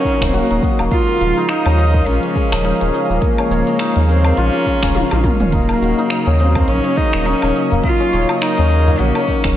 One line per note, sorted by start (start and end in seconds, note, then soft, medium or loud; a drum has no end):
0.00 0.87 C#3 medium
0.00 0.87 F#3 medium
0.00 0.79 A#3 medium
0.00 0.87 A#3 medium
0.00 0.21 C#4 medium
0.00 0.27 C#4 loud
0.00 0.89 C#4 medium
0.00 0.33 F#4 loud
0.00 0.78 G#4 medium
0.00 1.08 A#4 medium
0.00 1.45 C#5 loud
0.00 0.63 D#5 medium
0.00 9.57 F5 loud
0.05 0.50 D#4 medium
0.05 kick medium
0.05 shaker medium
0.21 0.42 D#1 medium
0.21 1.65 C#4 medium
0.21 finger snap medium
0.21 kick medium
0.21 shaker soft
0.27 0.35 C4 medium
0.34 0.79 A#3 medium
0.34 1.27 F#4 loud
0.34 closed hi-hat medium
0.34 shaker soft
0.50 0.60 D#1 loud
0.50 0.91 D#4 medium
0.50 closed hi-hat soft
0.50 shaker soft
0.63 1.78 D#5 loud
0.63 kick loud
0.63 shaker medium
0.79 0.89 D#1 loud
0.79 1.94 A#3 medium
0.79 low woodblock medium
0.79 shaker soft
0.91 9.57 C#3 medium
0.91 5.49 F3 medium
0.91 5.49 G#3 medium
0.91 1.37 D#4 medium
0.91 1.51 F4 loud
0.91 kick loud
0.91 closed hi-hat medium
0.91 shaker soft
1.08 2.06 A#4 medium
1.08 closed hi-hat soft
1.08 shaker soft
1.21 1.33 D#1 loud
1.21 4.37 F4 medium
1.21 shaker medium
1.37 1.48 D#4 loud
1.37 shaker soft
1.49 2.64 D#4 loud
1.49 2.08 D#4 loud
1.49 finger snap medium
1.49 closed hi-hat medium
1.49 shaker soft
1.65 2.02 D#2 medium
1.65 2.80 C#4 medium
1.65 closed hi-hat soft
1.65 low woodblock medium
1.65 shaker soft
1.78 2.51 D#5 loud
1.78 shaker medium
1.94 3.09 A#3 medium
1.94 kick medium
1.94 shaker soft
2.06 2.19 A#1 medium
2.06 2.93 C#4 medium
2.06 3.22 A#4 medium
2.06 closed hi-hat medium
2.06 shaker soft
2.23 3.51 C#5 medium
2.23 closed hi-hat soft
2.23 shaker soft
2.36 5.39 G#4 medium
2.36 kick medium
2.36 shaker medium
2.52 2.73 D#1 medium
2.52 2.93 D#5 loud
2.52 finger snap medium
2.52 low woodblock medium
2.52 shaker soft
2.64 3.80 D#4 loud
2.64 closed hi-hat medium
2.64 shaker soft
2.81 2.91 D#1 loud
2.81 3.38 C#4 medium
2.81 closed hi-hat soft
2.81 shaker soft
2.93 3.67 D#5 loud
2.93 shaker medium
3.09 3.19 D#1 medium
3.09 4.25 A#3 medium
3.09 shaker soft
3.22 4.05 A#3 medium
3.22 4.08 A#4 medium
3.22 kick loud
3.22 closed hi-hat medium
3.22 shaker soft
3.38 3.96 C#4 loud
3.38 closed hi-hat soft
3.38 low woodblock medium
3.38 shaker soft
3.50 3.63 D#1 loud
3.50 6.06 C#5 loud
3.50 shaker medium
3.67 6.06 D#5 medium
3.67 closed hi-hat soft
3.67 shaker soft
3.79 5.11 D#4 loud
3.79 finger snap medium
3.79 closed hi-hat medium
3.79 shaker soft
3.96 4.32 D#2 medium
3.96 4.83 C#4 medium
3.96 closed hi-hat soft
3.96 shaker soft
4.08 4.39 C4 medium
4.08 4.54 A#4 medium
4.08 shaker medium
4.25 6.56 A#3 medium
4.25 closed hi-hat soft
4.25 low woodblock medium
4.25 shaker soft
4.37 4.50 A#1 medium
4.37 5.24 C#4 loud
4.37 4.66 F4 loud
4.37 closed hi-hat medium
4.37 shaker soft
4.53 5.24 A#4 medium
4.53 closed hi-hat soft
4.53 shaker soft
4.66 4.95 F4 medium
4.66 kick medium
4.66 shaker medium
4.83 5.03 D#1 medium
4.83 5.40 C#4 loud
4.83 finger snap medium
4.83 kick medium
4.83 shaker soft
4.95 5.88 F4 medium
4.95 closed hi-hat medium
4.95 high tom medium
4.95 shaker soft
5.11 5.32 A#1 loud
5.11 5.53 D#4 medium
5.11 closed hi-hat soft
5.11 high tom medium
5.11 low woodblock medium
5.11 shaker soft
5.24 5.69 A#4 medium
5.24 kick loud
5.24 mid tom medium
5.24 shaker medium
5.40 5.77 D#1 medium
5.40 6.26 C#4 medium
5.40 mid tom medium
5.40 shaker soft
5.52 9.57 F#3 medium
5.52 9.57 A#3 medium
5.52 6.41 A#3 loud
5.52 9.57 D#4 medium
5.52 5.98 D#4 medium
5.52 kick loud
5.52 closed hi-hat medium
5.52 shaker soft
5.69 6.68 A#4 medium
5.69 closed hi-hat soft
5.69 low woodblock medium
5.69 shaker soft
5.81 5.94 D#1 loud
5.81 8.99 F#4 medium
5.81 shaker medium
5.98 6.10 D#4 loud
5.98 shaker soft
6.10 7.26 D#4 loud
6.10 finger snap medium
6.10 closed hi-hat medium
6.10 shaker soft
6.26 6.63 D#2 medium
6.26 7.41 C#4 medium
6.26 closed hi-hat soft
6.26 shaker soft
6.39 6.70 C4 medium
6.39 7.13 D#5 loud
6.39 shaker medium
6.55 7.71 A#3 medium
6.55 kick loud
6.55 udu medium
6.55 low woodblock medium
6.55 shaker soft
6.68 6.80 A#1 medium
6.68 6.98 C#4 loud
6.68 7.83 A#4 medium
6.68 closed hi-hat medium
6.68 shaker soft
6.84 8.12 C#5 medium
6.84 closed hi-hat soft
6.84 shaker soft
6.97 7.27 D#4 loud
6.97 9.57 G#4 medium
6.97 kick loud
6.97 shaker medium
7.13 7.34 D#1 medium
7.13 7.55 D#5 loud
7.13 finger snap medium
7.13 shaker soft
7.25 7.71 C#4 loud
7.25 8.41 D#4 loud
7.25 closed hi-hat medium
7.25 shaker soft
7.42 7.52 D#1 loud
7.42 8.00 C#4 medium
7.42 closed hi-hat soft
7.42 low woodblock medium
7.42 shaker soft
7.55 8.29 D#5 loud
7.55 shaker medium
7.71 7.81 D#1 medium
7.71 8.86 A#3 medium
7.71 udu medium
7.71 shaker soft
7.84 8.38 F4 loud
7.84 8.70 A#4 medium
7.84 kick loud
7.84 closed hi-hat medium
7.84 shaker soft
8.00 8.58 C#4 medium
8.00 closed hi-hat soft
8.00 shaker soft
8.13 8.25 D#1 loud
8.13 9.57 C#5 loud
8.13 shaker medium
8.29 9.57 D#5 loud
8.29 low woodblock medium
8.29 shaker soft
8.42 9.28 D#4 loud
8.42 9.01 D#4 loud
8.42 finger snap medium
8.42 closed hi-hat medium
8.42 shaker soft
8.58 8.94 D#2 medium
8.58 9.44 C#4 medium
8.58 closed hi-hat soft
8.58 shaker soft
8.70 9.16 A#4 medium
8.70 shaker medium
8.87 9.57 A#3 medium
8.87 udu medium
8.87 shaker soft
8.99 9.12 A#1 medium
8.99 9.57 C#4 loud
8.99 9.56 F#4 medium
8.99 closed hi-hat medium
8.99 shaker soft
9.15 9.57 A#4 medium
9.15 closed hi-hat soft
9.15 low woodblock medium
9.15 shaker soft
9.28 9.57 D#4 medium
9.28 kick medium
9.28 shaker medium
9.44 9.57 D#1 medium
9.44 9.57 C#4 medium
9.44 finger snap medium
9.44 kick loud
9.44 shaker soft